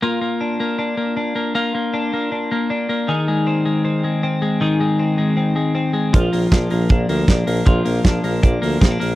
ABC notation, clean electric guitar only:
X:1
M:4/4
L:1/16
Q:1/4=157
K:Bbmix
V:1 name="Clean electric guitar"
[B,F]2 B,2 D2 B,2 D2 B,2 D2 B,2 | [B,F]2 B,2 D2 B,2 D2 B,2 D2 B,2 | [E,A]2 A,2 C2 A,2 C2 A,2 C2 A,2 | [E,A]2 A,2 C2 A,2 C2 A,2 C2 A,2 |
[F,F]2 B,2 D2 B,2 D2 B,2 D2 B,2 | [F,F]2 B,2 D2 B,2 D2 B,2 C D B,2 |]